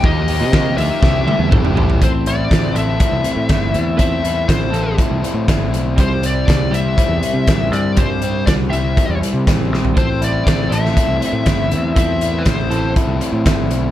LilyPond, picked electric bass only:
\new Staff \with { instrumentName = "Picked electric bass" } { \clef bass \time 4/4 \key a \minor \tempo 4 = 121 ees,8. c8. d,16 r16 c,8 r16 e,16 g,,8 a,,8 | a,,4 a,,8 a,,8 r16 c,16 r16 a,16 g,,8 e,8~ | e,4 a,,8 a,,8 r16 c,16 r16 a,16 g,,8 b,,8 | c,4 c,8 c,8 r16 e,16 r16 c16 a,,8 g,8~ |
g,4 c,8 c,8 r16 e,16 r16 c16 a,,8 bes,,8 | a,,4 a,,8 a,,8 r16 c,16 r16 a,16 g,,8 e,8~ | e,4 a,,8 a,,8 r16 c,16 r16 a,16 g,,8 b,,8 | }